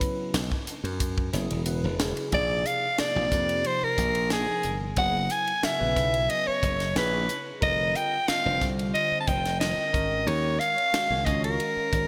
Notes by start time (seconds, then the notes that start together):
Already playing: C#3 F#3 B3 E4 B4
0.01 kick, hi-hat pedal, ride
0.34 B1, snare, hi-hat pedal, ride
0.52 kick
0.67 muted slap bass stroke, hi-hat pedal, ride
0.84 F#2, ride
1.00 kick, hi-hat pedal, ride
1.18 kick
1.33 F#1 C#3 F#3 B3 E4 G#4, snare, hi-hat pedal, ride
1.51 E1, ride
1.66 C#3 F#3 B3 E4 B4, hi-hat pedal, ride
1.84 E1
1.99 C#3 F#3 B3 E4 G#4, snare, hi-hat pedal, ride
2.17 ride
2.32 A#1 C3 F3 A#3 D#4 G#4 D5, kick, ride
2.66 F5, hi-hat pedal, ride
2.98 C3 F3 A#3 D#4 G#4 D5, muted slap bass stroke, snare, ride
3.15 A#1 C3 F3 A#3 D#4 G4
3.32 F2, kick, hi-hat pedal, ride
3.49 ride
3.64 C5, ride
3.83 A#4, muted slap bass stroke
3.98 A#1, kick, hi-hat pedal, ride
4.15 ride
4.30 C3 F3 A#3 D#4 G#4, snare, ride
4.63 G1, hi-hat pedal, ride
4.96 F#1 C#3 F#3 B3 E4 G#4 F#5, kick, ride
5.30 G#5, hi-hat pedal, ride
5.47 ride
5.63 C#3 F#3 B3 E4 A#4 E5, muted slap bass stroke, snare, ride
5.80 B1 C#3 F#3 B3 E4 B4
5.96 B1, kick, snare, hi-hat pedal, ride
6.14 ride
6.30 D#5, ride
6.46 C#5, muted slap bass stroke
6.63 F#1, kick, hi-hat pedal, ride
6.80 snare, ride
6.95 A#1 C#3 F#3 B3 E4 G#4 B4, snare, ride
7.29 hi-hat pedal, ride
7.61 F1 D3 G3 C4 F4 A#4 D#5, kick, ride
7.95 G5, hi-hat pedal, ride
8.28 D3 G3 C4 F4 A#4 F5, muted slap bass stroke, snare, ride
8.45 F1 D3 G3 C4 F4 C5
8.61 C2, kick, snare, hi-hat pedal, ride
8.79 ride
8.94 D#5, ride
9.12 muted slap bass stroke
9.20 A5
9.27 F1 G5, kick, hi-hat pedal, ride
9.45 snare, ride
9.60 D3 G3 C4 F4 A#4 D#5, snare, ride
9.78 muted slap bass stroke
9.93 G#1 D#3 G#3 C#4 F#4 A#4, kick, hi-hat pedal, ride
10.27 D#2 C#5, ride
10.59 F5, hi-hat pedal, ride
10.78 ride
10.93 D#3 G#3 C#4 F#4 A#4, muted slap bass stroke, snare, ride
11.10 C#2 D#3 G#3 C#4 F#4 C#5
11.25 C#2 D#5, kick, hi-hat pedal, ride
11.44 A#4, ride
11.60 ride
11.77 muted slap bass stroke
11.93 G#1, kick, hi-hat pedal, ride